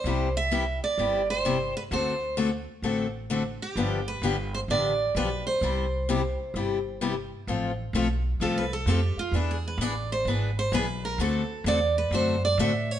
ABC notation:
X:1
M:4/4
L:1/8
Q:"Swing" 1/4=129
K:C
V:1 name="Steel-string acoustic guitar"
c e2 d2 c2 B | c2 z4 z G- | G B2 c d2 B c- | c6 z2 |
z4 (3A B A G F | (3E ^G B d c B c B _B | A2 d B c d e _d |]
V:2 name="Steel-string acoustic guitar"
[C,G,B,EG] z [C,G,B,EG] z [C,G,B,EG] z [C,G,B,EG] z | [D,A,C^FA] z [D,A,CFA] z [D,A,CFA] z [D,A,CFA] z | [D,F,B,DG] z [D,F,B,DG] z [D,F,B,DG] z [D,F,B,DG] z | [C,G,B,EG] z [C,G,B,EG] z [C,G,B,EG] z [C,G,B,EG] z |
[F,A,CFA] z [F,A,CFA] z [F,A,CFA] z [F,A,CFA] z | [E,B,D^G] z [E,B,DG] z [E,B,DG] z [E,B,DG] z | [D,A,C^FA] z [D,A,CFA] z [D,A,CFA] z [D,A,CFA] z |]
V:3 name="Upright bass" clef=bass
C,,4 G,,,4 | D,,4 A,,,4 | G,,,2 G,,,2 A,,,2 B,,,2 | C,,4 G,,,4 |
A,,,2 B,,,2 C,,2 F,, z | E,,2 A,,,2 ^G,,,2 B,,,2 | D,,2 E,,2 ^F,,2 A,,2 |]